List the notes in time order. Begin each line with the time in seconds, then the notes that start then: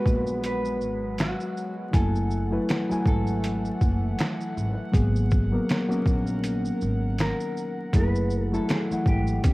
Already playing: F#3 G#3 B3 F#4 A#4 B4 F#5
0.06 A#1, kick, shaker
0.27 shaker
0.44 B4, closed hi-hat, shaker
0.65 shaker
0.81 G#1, shaker
1.18 F#4, finger snap, snare, closed hi-hat, shaker
1.40 shaker
1.57 shaker
1.91 F#1 E3 F#3 A3 E4 G#5, kick, closed hi-hat, shaker
1.96 A4
2.15 shaker
2.31 shaker
2.51 F#3 A3 E4 B4
2.69 finger snap, snare, closed hi-hat, shaker
2.90 F#3 A3 E4 G#5, muted upright bass stroke, shaker
3.06 G#1 A4, kick, shaker
3.27 shaker
3.44 closed hi-hat, shaker
3.65 shaker
3.81 F#1, kick, shaker
4.18 finger snap, snare, closed hi-hat, shaker
4.41 shaker
4.57 G#1, shaker
4.92 G#1 D#3 F#3 A#3 B3 G#4 A#4, kick, closed hi-hat, shaker
5.16 shaker
5.31 kick, shaker
5.52 F#3 A#3 B3 A#4
5.69 finger snap, snare, closed hi-hat, shaker
5.88 F#3 A#3 B3 C#4, muted upright bass stroke, shaker
6.06 A#1, kick, shaker
6.27 shaker
6.44 closed hi-hat, shaker
6.65 shaker
6.81 G#1, shaker
7.18 A#4, finger snap, snare, closed hi-hat, shaker
7.40 shaker
7.57 shaker
7.93 F#1 E3 F#3 A3 E4 G#4 B4, kick, closed hi-hat, shaker
8.15 shaker
8.30 shaker
8.42 A4
8.52 F#3 A3 E4 A4, shaker
8.69 G#4, finger snap, snare, closed hi-hat, shaker
8.90 E3 A3 E4 F#5, muted upright bass stroke, shaker
9.06 G#1 G4, kick, shaker
9.27 shaker
9.42 D#2 D#3 B3 C#4 G4, kick, closed hi-hat, shaker